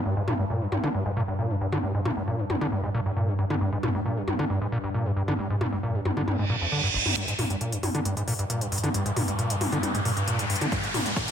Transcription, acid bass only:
0.05 G2
0.17 G#2
0.28 A#2
0.39 G2
0.50 A#2
0.61 G2
0.72 G2
0.84 D3
0.94 G2
1.06 G#2
1.17 A#2
1.28 G2
1.39 A#2
1.50 G2
1.61 G2
1.72 D3
1.83 G2
1.95 G#2
2.05 A#2
2.17 G2
2.28 A#2
2.39 G2
2.50 G2
2.61 D3
2.72 G2
2.84 G#2
2.94 A#2
3.06 G2
3.17 A#2
3.28 G2
3.39 G2
3.50 D3
3.61 G2
3.72 G#2
3.83 A#2
3.95 G2
4.05 A#2
4.17 G2
4.28 G2
4.39 D3
4.50 G2
4.61 G#2
4.72 A#2
4.84 G2
4.94 A#2
5.06 G2
5.16 G2
5.28 D3
5.39 G2
5.50 G#2
5.61 A#2
5.72 G2
5.83 A#2
5.95 G2
6.05 G2
6.17 D3
6.28 G2
6.39 G#2
6.50 A#2
6.61 F2
6.72 D3
6.84 G2
6.94 G1
7.06 G2
7.16 G2
7.28 G#2
7.39 A#2
7.50 G2
7.61 A#2
7.72 G2
7.83 G2
7.95 D3
8.05 G2
8.17 G#2
8.28 A#2
8.39 G2
8.50 A#2
8.61 G2
8.72 G2
8.83 D3
8.94 G2
9.06 G#2
9.16 A#2
9.28 G2
9.39 A#2
9.50 G2
9.61 G2
9.72 D3
9.83 G2
9.95 G#2
10.05 A#2
10.17 G2
10.28 A#2
10.39 G2
10.50 G2
10.61 D3
10.72 G2
10.83 G#2
10.94 A#2
11.06 G2
11.16 A#2
11.28 G2

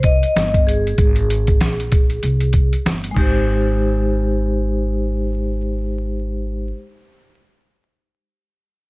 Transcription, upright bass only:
Already playing: C2
0.23 muted upright bass stroke
0.36 G1
0.99 G#1
1.61 A#1
2.23 C2
2.73 muted upright bass stroke
2.85 G1
3.17 G#1

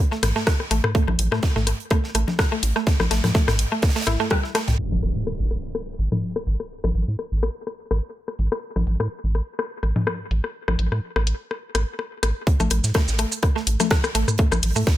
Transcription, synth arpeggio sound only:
0.12 A3
0.36 A3
0.71 A3
0.95 A3
1.32 A3
1.56 A3
1.91 A3
2.15 A3
2.52 A3
2.76 A3
3.11 A3
3.35 A3
3.72 A3
3.96 A3
4.07 E4
4.20 A3
4.31 G3
4.55 A3
12.60 A3
12.95 A3
13.19 A3
13.56 A3
13.80 A3
14.15 A3
14.39 A3
14.76 A3

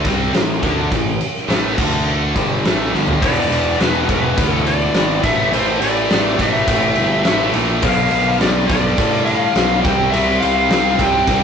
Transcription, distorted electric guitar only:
0.05 C3 G3 C4
0.34 A2 E3
0.63 D3 A3 D4
0.92 A2 E3
1.49 A2 E3 A3
1.78 D3 A3 D4
2.35 G2 D3 G3
2.65 A2 E3 A3
2.93 G2 D3 G3
3.22 E2 B2 E3
3.80 E2 B2 E3
4.09 E2 B2 E3
4.37 E2 B2 E3
4.95 E2 B2 E3
5.24 A2 E3 A3
5.53 A2 E3 A3
6.10 A2 E3 A3
6.39 A2 E3 A3
6.67 A2 E3 A3
7.25 A2 E3 A3
7.54 A2 E3 A3
7.83 G2 D3 G3
8.40 G2 D3 G3
8.69 G2 D3 G3
8.98 G2 D3 G3
9.56 G2 D3 G3
9.84 C3 G3 C4
10.13 C3 G3 C4
10.70 C3 G3 C4
10.98 C3 G3 C4
11.27 C3 G3 C4

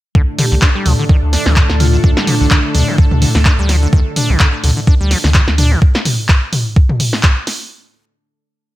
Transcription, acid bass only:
0.15 D3
0.39 D3
0.52 D3
0.62 D4
0.76 G3
0.86 F3
0.99 D3
1.10 D#3
1.33 D4
1.46 D3
1.57 D3
1.80 D3
1.93 D3
2.04 D4
2.17 G3
2.27 F3
2.41 D3
2.51 D#3
2.75 D4
2.88 D3
2.98 D3
3.22 D3
3.35 D3
3.46 D4
3.59 G3
3.69 F3
3.83 D3
3.93 D#3
4.17 D4
4.30 D3
4.40 D3
4.64 D3
4.77 D3
4.88 D4
5.01 G3
5.11 F3
5.24 D3
5.35 D#3
5.58 D4
5.71 D3

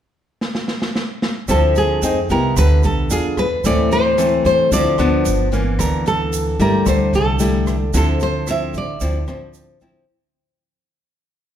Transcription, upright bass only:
1.49 D2
2.02 F2
2.30 C2
2.57 D2
2.84 B1
3.10 E2
3.65 D2
4.45 E2
4.72 D2
4.99 D2
5.26 G1
5.79 D2
6.59 G2
6.87 D2
7.13 C2
7.94 D2
8.74 A1
9.01 D2
9.28 A1

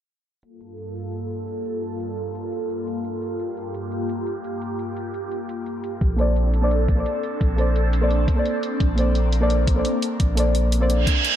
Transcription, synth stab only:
6.16 A#3 A4 C5
6.21 D5
6.62 A#3 A4 C5 D5
6.95 A#3 A4 C5
7.00 D5
7.56 A#3 A4 C5
7.61 D5
8.01 A#3 A4 C5 D5
8.35 A#3 A4 C5
8.39 D5
8.96 A#3 A4 C5
9.00 D5
9.41 A#3 A4 C5 D5
9.74 A#3 A4 C5
9.79 D5
10.35 A#3 A4 C5
10.40 D5
10.80 A#3 A4 C5 D5

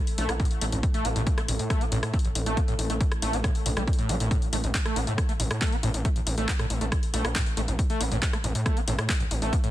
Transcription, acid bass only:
0.18 A3
0.29 C4
0.40 A2
0.61 A3
0.72 A1
0.94 A3
1.05 C4
1.16 A2
1.38 A3
1.48 A1
1.70 A3
1.81 C4
1.92 A2
2.14 A3
2.25 A1
2.46 A3
2.57 C4
2.68 A2
2.90 A3
3.01 A1
3.22 A3
3.33 C4
3.44 A2
3.66 A2
3.77 G3
3.98 A2
4.09 A3
4.20 A2
4.31 A2
4.53 A3
4.64 A1
4.85 A3
4.96 C4
5.07 A2
5.29 A3
5.40 A1
5.61 A3
5.72 C4
5.83 A2
6.05 A3
6.16 A1
6.38 A3
6.48 C4
6.59 A2
6.81 A3
6.92 A1
7.14 A3
7.25 C4
7.35 A2
7.57 A3
7.68 A1
7.90 A3
8.01 C4
8.12 A2
8.33 A3
8.44 A1
8.66 A3
8.77 C4
8.88 A2
9.09 A3
9.20 A1
9.42 A3
9.53 C4
9.64 A2

